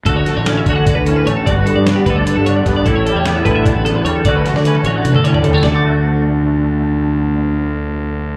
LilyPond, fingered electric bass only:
\new Staff \with { instrumentName = "Fingered electric bass" } { \clef bass \time 7/8 \key d \major \tempo 4 = 151 d,8 r16 a,,8. d8. d,8. a,,16 r16 | g,,8 r16 g,8 r16 d,8 r16 g,8. g,8 | a,,8 r16 e,8. a,8. a,,8. e,16 r16 | d,8 r16 d8 r16 a,,8 r16 d8. d8 |
d,2.~ d,8~ | d,2.~ d,8 | }